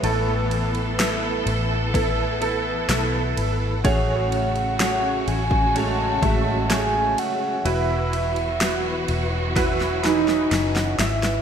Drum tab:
RD |x-xxx-x-x-x-x-x-|x-xxx-x-x-x-x-x-|x-xxx-x-x-x-x-x-|
SD |----o-------o---|----o-------o---|----o---oooooooo|
BD |--------o-------|o------o--o-----|--------o-------|